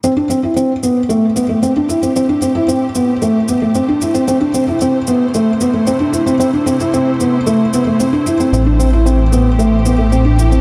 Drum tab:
SH |x-x-x-x-x-x-x-xx|x-x-x-x-x-x-x-xx|x-x-x-x-x-x-x-xx|x-xxx-x-x-x-x-xx|

SH |x-x-x-x-x-x-x-xx|